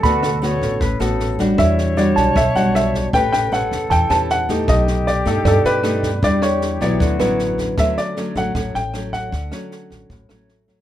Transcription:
<<
  \new Staff \with { instrumentName = "Tine electric piano" } { \time 4/4 \key d \major \tempo 4 = 155 <a'' b''>2. r4 | r4. a''2~ a''8~ | a''8 r4. a''2~ | a''8 r4. d''2~ |
d''8 r2 b'4.~ | b'8 r2. r8 | r1 | }
  \new Staff \with { instrumentName = "Grand piano" } { \time 4/4 \key d \major a'2~ a'8 r4. | e''4 d''4 e''8 fis''8 e''8 r8 | g''8 g''8 fis''4 g''8 a''8 fis''8 r8 | dis''4 d''8 a'8 a'8 b'4. |
d''8 cis''4 d''4. r4 | e''8 d''4 fis''4 g''4 fis''8~ | fis''2~ fis''8 r4. | }
  \new Staff \with { instrumentName = "Flute" } { \time 4/4 \key d \major fis'4 cis''4 b'8 a'4 r8 | cis''1 | b'4 a'2~ a'8 r8 | g'1 |
g'2 fis'4. r8 | r1 | r1 | }
  \new Staff \with { instrumentName = "Nylon-string guitar" } { \time 4/4 \key d \major << { <a b fis'>8 r8 <a b fis'>4 r8 <a b fis'>4 <g d' fis'>8~ | <g d' fis'>4 <g d' fis'>4 r8 <g d' fis'>4. | <cis' g' b'>4 <cis' g' b'>4. <cis' g' b'>4 <a ees' g'>8~ | <a ees' g'>4 r8 <a dis' g'>4. <a dis' g'>8 r8 |
<g d'>4. <fis b e'>4 <fis b e'>4. | <fis a cis'>4 <fis a cis'>8 <fis a cis'>8 <fis a cis'>8 r8 <fis a cis'>4 | r8 <fis a cis'>2 <fis a cis'>4 <fis a cis'>8 | } \\ { d2 a,2 | e2 b,2 | a2 e2 | b,2 b,2 |
e2 d2 | d2 a,2 | d2 a,2 | } >> }
  \new Staff \with { instrumentName = "Upright bass" } { \clef bass \time 4/4 \key d \major d,4. a,,8 a,,8 a,,4. | e,4. b,,8 b,,8 b,,4. | a,,4. e,8 e,8 e,4. | b,,4. g,8 g,8 g,4. |
e,4. b,,8 d,8 a,,4. | d,8 r4 a,,8 a,,8 a,,4. | d,8 r4 a,,8 a,,8 a,,4. | }
  \new DrumStaff \with { instrumentName = "Drums" } \drummode { \time 4/4 <bd sn>8 <ss sn>8 sn8 <bd sn>8 <bd sn>8 <ss sn>8 sn8 <bd sn>8 | <bd ss sn>8 sn8 sn8 <bd sn>8 <bd ss sn>8 sn8 <ss sn>8 <bd sn>8 | <bd sn>8 <ss sn>8 sn8 <bd sn>8 <bd sn>8 <ss sn>8 sn8 <bd sn>8 | <bd ss sn>8 sn8 sn8 <bd sn>8 <bd ss sn>8 sn8 <ss sn>8 <bd sn>8 |
<bd sn>8 <ss sn>8 sn8 <bd sn>8 <bd sn>8 <ss sn>8 sn8 <bd sn>8 | <bd ss sn>8 sn8 sn8 <bd sn>8 <bd ss sn>8 sn8 <ss sn>8 <bd sn>8 | <bd sn>8 <ss sn>8 sn8 <bd sn>8 <bd sn>8 <ss sn>8 sn8 <bd sn>8 | }
>>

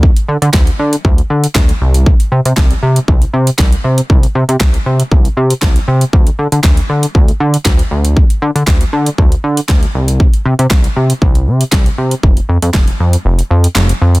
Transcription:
<<
  \new Staff \with { instrumentName = "Analog synth bass" } { \clef bass \time 4/4 \key c \dorian \tempo 4 = 118 d,8 d16 d16 d,8 d8 d,8 d8 d,8 c,8~ | c,8 c16 c16 c,8 c8 c,8 c8 c,8 c8 | c,8 c16 c16 c,8 c8 c,8 c8 c,8 c8 | d,8 d16 d16 d,8 d8 d,8 d8 d,8 d,8~ |
d,8 d16 d16 d,8 d8 d,8 d8 d,8 c,8~ | c,8 c16 c16 c,8 c8 c,8 c8 c,8 c8 | f,,8 f,16 f,16 f,,8 f,8 f,,8 f,8 f,,8 f,8 | }
  \new DrumStaff \with { instrumentName = "Drums" } \drummode { \time 4/4 bd16 hh8 hh16 <hc bd sn>16 hh8 hh16 bd16 hh8 hh16 <hc bd sn>16 hh8 hh16 | bd16 hh8 hh16 <hc bd sn>16 hh8 hh16 bd16 hh8 hh16 <hc bd sn>16 hh8 hh16 | bd16 hh8 hh16 <hc bd sn>16 hh8 hh16 bd16 hh8 hh16 <hc bd sn>16 hh8 hh16 | bd16 hh8 hh16 <hc bd sn>16 hh8 hh16 bd16 hh8 hh16 <hc bd sn>16 hh8 hh16 |
bd16 hh8 hh16 <hc bd sn>16 hh8 hh16 bd16 hh8 hh16 <hc bd sn>16 hh8 hh16 | bd16 hh8 hh16 <hc bd sn>16 hh8 hh16 bd16 hh8 hh16 <hc bd sn>16 hh8 hh16 | bd16 hh8 hh16 <hc bd sn>16 hh8 hh16 r16 hh8 hh16 <hc sn>16 hh8 hh16 | }
>>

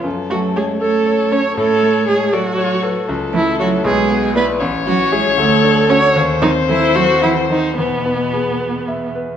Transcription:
<<
  \new Staff \with { instrumentName = "Violin" } { \time 6/8 \key fis \minor \tempo 4. = 78 a'4. cis''4. | cis''4. d''8 cis''8 b'8 | \key a \major a'4. b'4. | cis''2. |
bis'2. | b'2~ b'16 r8. | }
  \new Staff \with { instrumentName = "Grand piano" } { \time 6/8 \key fis \minor fis,8 a8 cis''8 a'8 cis''8 a'8 | a,8 a8 cis''8 a'8 cis''8 a'8 | \key a \major cis,8 a8 <e' cis''>8 b,,8 b8 <e' d''>8 | a,,8 cis'8 <e' cis''>8 d,8 d'8 <fis' a'>8 |
dis,8 bis8 a'8 bis'8 fis''8 bis'8 | e,8 b8 gis'8 b'8 e''8 b'8 | }
  \new Staff \with { instrumentName = "Viola" } { \time 6/8 \key fis \minor r8 fis'8 gis'8 a'4 cis''8 | a'4 gis'8 fis'4. | \key a \major r8 e'8 fis'8 gis'4 b'8 | r8 fis'8 gis'8 a'4 cis''8 |
r8 dis'8 e'8 fis'8 e'8 dis'8 | b2~ b8 r8 | }
  \new Staff \with { instrumentName = "Cello" } { \clef bass \time 6/8 \key fis \minor r8 fis8 gis8 a4 cis'8 | a4 gis8 fis4. | \key a \major r8 e8 fis8 gis4 b8 | r8 fis8 gis8 a4 cis'8 |
r8 dis8 e8 fis8 e8 dis8 | b,2~ b,8 r8 | }
>>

